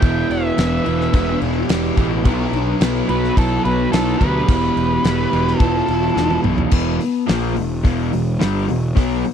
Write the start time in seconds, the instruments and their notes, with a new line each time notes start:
Already playing: lead electric guitar E5 G5
0.02 picked electric bass E1, overdriven electric guitar E2 B2 E3, kick, crash
0.30 picked electric bass E1, lead electric guitar B4 E5, crash
0.57 picked electric bass E1, overdriven electric guitar E2 B2 E3, snare, crash
0.85 picked electric bass E1, overdriven electric guitar E2 B2 E3, crash
1.01 snare
1.13 picked electric bass E1, overdriven electric guitar E2 B2 E3, lead electric guitar B3, kick, crash
1.31 lead electric guitar D4
1.42 picked electric bass E1, lead electric guitar E4, crash
1.58 lead electric guitar G4
1.68 picked electric bass E1, overdriven electric guitar E2 B2 E3, snare, crash
1.97 picked electric bass A1, overdriven electric guitar E2 B2 E3, kick, crash
2.14 lead electric guitar E4
2.25 picked electric bass B1, overdriven electric guitar B2 F#3 B3, kick, crash
2.42 lead electric guitar E4
2.53 picked electric bass B1, lead electric guitar D4, crash
2.81 picked electric bass B1, overdriven electric guitar B2 F#3 B3, lead electric guitar E4, snare, crash
3.08 picked electric bass B1, overdriven electric guitar B2 F#3 B3, lead electric guitar F#4 B4, crash
3.24 snare
3.37 picked electric bass B1, overdriven electric guitar B2 F#3 B3, lead electric guitar E4 A4, kick, crash
3.65 picked electric bass B1, lead electric guitar F#4 B4, crash
3.92 picked electric bass B1, overdriven electric guitar B2 F#3 B3, lead electric guitar E4 A4, snare, crash
4.18 picked electric bass D2, overdriven electric guitar B2 F#3 B3, lead electric guitar G4 B4, kick, crash
4.48 picked electric bass E1, overdriven electric guitar E2 B2 E3, kick, crash
4.76 picked electric bass E1, crash
5.04 picked electric bass E1, overdriven electric guitar E2 B2 E3, lead electric guitar A4, snare, crash
5.21 lead electric guitar B4
5.32 picked electric bass E1, overdriven electric guitar E2 B2 E3, crash
5.48 snare
5.59 picked electric bass E1, overdriven electric guitar E2 B2 E3, lead electric guitar F4 A4, kick, crash
5.76 lead electric guitar A4
5.88 picked electric bass E1, lead electric guitar E4, crash
6.15 picked electric bass E1, overdriven electric guitar E2 B2 E3, lead electric guitar E4, snare
6.30 high tom
6.43 picked electric bass B1, overdriven electric guitar E2 B2 E3, mid tom
6.58 floor tom
6.71 picked electric bass E1, overdriven electric guitar E2 B2 E3, kick, crash
6.99 muted overdriven electric guitar stroke, muted picked electric bass stroke, open hi-hat
7.27 picked electric bass A#1, overdriven electric guitar A#2 F3 A#3, snare, open hi-hat
7.54 picked electric bass E1, overdriven electric guitar E2 B2, open hi-hat
7.83 picked electric bass E1, overdriven electric guitar E2 B2 E3, kick, open hi-hat
8.11 picked electric bass E1, overdriven electric guitar E2 B2, open hi-hat
8.39 picked electric bass G1, overdriven electric guitar G2 D3 G3, snare, open hi-hat
8.68 picked electric bass E1, overdriven electric guitar E2 B2, open hi-hat
8.95 picked electric bass B1, overdriven electric guitar B2 F#3 B3, kick, open hi-hat
9.24 muted overdriven electric guitar stroke, muted picked electric bass stroke, open hi-hat